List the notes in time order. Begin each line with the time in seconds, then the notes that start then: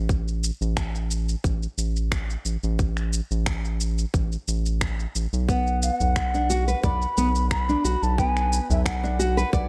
Already playing: A1
0.09 kick, shaker
0.28 shaker
0.44 shaker
0.61 A1, shaker
0.77 finger snap, kick, shaker
0.95 shaker
1.11 shaker
1.29 shaker
1.44 A1, kick, shaker
1.63 shaker
1.78 A1, shaker
1.96 shaker
2.12 finger snap, kick, shaker
2.30 shaker
2.45 A1, shaker
2.63 A1, shaker
2.79 kick, shaker
2.97 finger snap, shaker
3.13 shaker
3.31 A1, shaker
3.46 finger snap, kick, shaker
3.65 shaker
3.81 shaker
3.98 shaker
4.14 A1, kick, shaker
4.32 shaker
4.48 A1, shaker
4.66 shaker
4.81 finger snap, kick, shaker
5.00 shaker
5.15 A1, shaker
5.33 B1, shaker
5.49 B3 F#5, kick, shaker
5.67 shaker
5.83 F5, shaker
5.95 F#5
6.00 B1, udu, shaker
6.16 finger snap, kick, shaker
6.34 D4, shaker
6.50 F#4, shaker
6.68 B4, shaker
6.83 B1 D5 B5, kick, udu, shaker
7.02 shaker
7.18 B1 B3, shaker
7.35 shaker
7.51 B5, finger snap, kick, shaker
7.69 D4, shaker
7.85 B1 F#4, shaker
8.03 B1 A5, shaker
8.18 B3 G#5, kick, shaker
8.37 finger snap, shaker
8.53 shaker
8.70 B1 E5, udu, shaker
8.86 F#5, finger snap, kick, shaker
9.04 D4, shaker
9.19 F#4, shaker
9.37 B4, shaker
9.53 B1 D5, kick, shaker